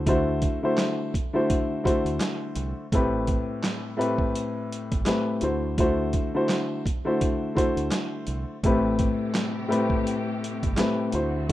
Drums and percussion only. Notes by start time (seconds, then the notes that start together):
0.06 kick, closed hi-hat
0.42 kick, closed hi-hat
0.78 snare, clap, closed hi-hat
1.14 kick, closed hi-hat
1.50 kick, closed hi-hat
1.85 kick, closed hi-hat
2.06 closed hi-hat
2.20 snare, clap, closed hi-hat
2.56 closed hi-hat
2.92 kick, closed hi-hat
3.27 kick, closed hi-hat
3.63 snare, clap, closed hi-hat
4.01 closed hi-hat
4.18 kick
4.35 closed hi-hat
4.72 closed hi-hat
4.92 kick, closed hi-hat
5.06 snare, clap, closed hi-hat
5.41 closed hi-hat
5.78 kick, closed hi-hat
6.13 kick, closed hi-hat
6.49 snare, clap, closed hi-hat
6.86 kick, closed hi-hat
7.21 kick, closed hi-hat
7.57 kick, closed hi-hat
7.77 closed hi-hat
7.91 snare, clap, closed hi-hat
8.27 closed hi-hat
8.64 kick, closed hi-hat
8.99 kick, closed hi-hat
9.35 finger snap, snare, clap, closed hi-hat
9.72 closed hi-hat
9.90 kick
10.07 closed hi-hat
10.44 closed hi-hat
10.63 kick, closed hi-hat
10.77 finger snap, snare, clap, closed hi-hat
11.12 closed hi-hat